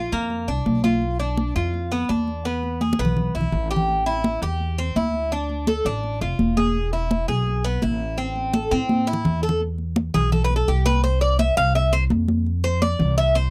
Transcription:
Already playing: cuban tres F4
0.12 upright bass F2, cuban tres A#3, high conga
0.30 high conga
0.48 upright bass C2, cuban tres D4, high conga
0.66 upright bass B1, high conga
0.84 cuban tres F4, high conga
1.02 high conga
1.20 cuban tres D4, high conga
1.37 high conga
1.56 upright bass F2, cuban tres F4, high conga
1.74 high conga
1.92 cuban tres B3, high conga
2.09 upright bass E2, cuban tres D4, high conga
2.27 high conga
2.45 cuban tres B3, high conga
2.63 high conga
2.81 cuban tres G#4, high conga
2.93 high conga
2.99 upright bass B1, cuban tres B3
3.05 low conga
3.17 low conga
3.35 upright bass B1, cuban tres E4
3.41 low conga
3.52 upright bass A1, low conga
3.71 cuban tres G4
3.76 low conga
3.88 high conga
4.06 cuban tres E4, high conga
4.24 high conga
4.42 upright bass E2, cuban tres G4, high conga
4.60 high conga
4.78 cuban tres C4, high conga
4.96 upright bass D2, cuban tres E4, high conga
5.14 high conga
5.32 cuban tres D4, high conga
5.50 high conga
5.67 cuban tres A4, high conga
5.85 upright bass A1, cuban tres D4, high conga
6.04 high conga
6.21 upright bass F1, cuban tres F4, high conga
6.39 upright bass E1, high conga
6.57 cuban tres G#4, high conga
6.75 high conga
6.93 cuban tres E4, high conga
7.11 high conga
7.28 upright bass B1, cuban tres G#4, high conga
7.46 high conga
7.64 cuban tres B3, high conga
7.82 upright bass A1, cuban tres E4, high conga
8.00 high conga
8.18 cuban tres C4, high conga
8.36 high conga
8.54 cuban tres A4, high conga
8.71 upright bass A2, cuban tres C4, high conga
8.89 high conga
9.07 cuban tres E4
9.13 low conga
9.25 upright bass E2, low conga
9.43 cuban tres A4
9.49 low conga
9.61 high conga
9.78 high conga
9.96 high conga
10.14 upright bass B1, cuban tres G#4, low conga
10.32 cuban tres A4, high conga, low conga
10.44 cuban tres B4
10.50 high conga
10.56 cuban tres A4
10.68 upright bass C2, cuban tres G4, high conga
10.86 cuban tres B4, high conga
11.04 cuban tres C5, high conga
11.21 cuban tres D5, high conga
11.39 cuban tres E5, high conga
11.57 upright bass C2, cuban tres F5, high conga
11.75 cuban tres E5, high conga
11.93 cuban tres C5, high conga
12.10 upright bass F2, high conga
12.28 high conga
12.46 high conga
12.64 cuban tres C5, high conga
12.82 cuban tres D5, high conga
12.99 upright bass C2, low conga
13.18 cuban tres E5, high conga
13.35 cuban tres C5, high conga

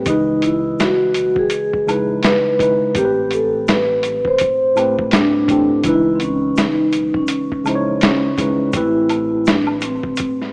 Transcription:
0.06 sub bass C#2, tine electric piano C#3 E3 G#3 D#5, vibraphone D#4, kick, closed hi-hat, shaker
0.10 tine electric piano B4
0.42 vibraphone E4, closed hi-hat, shaker
0.80 vibraphone F#4, snare, closed hi-hat, shaker
1.14 sub bass B1, closed hi-hat, shaker
1.36 vibraphone G#4, kick
1.50 closed hi-hat, shaker
1.73 kick
1.86 sub bass A#1, tine electric piano C#3 G#3 D#4 E4, closed hi-hat, high woodblock, shaker
1.91 tine electric piano B4
2.23 vibraphone B4, snare, closed hi-hat, shaker
2.58 sub bass G#1, tine electric piano C#3 G#3 D#4 E4, kick, closed hi-hat, shaker
2.62 tine electric piano B4
2.94 sub bass A1, tine electric piano A2 A3 C4 G4, vibraphone G4, kick, closed hi-hat, shaker
2.98 tine electric piano A#4
3.05 tine electric piano B4
3.31 vibraphone A4, closed hi-hat, shaker
3.68 vibraphone B4, snare, closed hi-hat, shaker
4.03 closed hi-hat, shaker
4.25 sub bass G1, vibraphone C5, kick
4.38 sub bass E1, kick, closed hi-hat, shaker
4.75 tine electric piano A2 A3 C4 G4, closed hi-hat, high woodblock, shaker
4.80 tine electric piano B4
4.99 kick
5.11 vibraphone D4, snare, closed hi-hat, shaker
5.48 sub bass A1, tine electric piano A2 A3 C4 G4, kick, closed hi-hat, shaker
5.52 tine electric piano A4
5.84 sub bass C#2, tine electric piano C#3 E3 G#3 D#4, vibraphone E4, kick, closed hi-hat, shaker
5.88 tine electric piano B4
6.16 vibraphone C4
6.20 vibraphone C#4, closed hi-hat, shaker
6.57 vibraphone D#4, snare, closed hi-hat, shaker
6.93 sub bass B1, closed hi-hat, shaker
7.14 vibraphone C#4, kick
7.27 closed hi-hat, shaker
7.52 kick
7.64 sub bass A#1, tine electric piano C#3 G#3 D#4 E4, closed hi-hat, high woodblock, shaker
7.69 tine electric piano C5
7.75 tine electric piano C#5
8.01 vibraphone C#4, snare, closed hi-hat, shaker
8.37 sub bass G#1, tine electric piano C#3 G#3 D#4 E4, kick, closed hi-hat, shaker
8.41 tine electric piano B4
8.73 sub bass A1, tine electric piano A2 A3 C4 G4, vibraphone E4, kick, closed hi-hat, shaker
8.77 tine electric piano B4
9.09 closed hi-hat, high woodblock, shaker
9.46 vibraphone D4, snare, closed hi-hat, shaker
9.67 high woodblock
9.81 vibraphone C4, closed hi-hat, shaker
10.03 sub bass G1, kick
10.16 sub bass E1, kick, closed hi-hat, shaker
10.42 snare

